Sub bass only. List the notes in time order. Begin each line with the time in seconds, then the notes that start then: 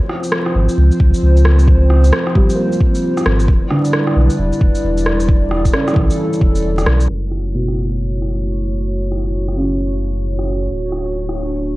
0.55 G#1
0.77 C#2
1.00 C#2
1.22 C#2
2.35 G#1
3.26 G#1
3.48 E1
4.16 B1
4.38 E1
4.61 E1
4.83 E1
5.96 B1
6.41 E1
6.86 B1
7.09 F#1
10.70 D1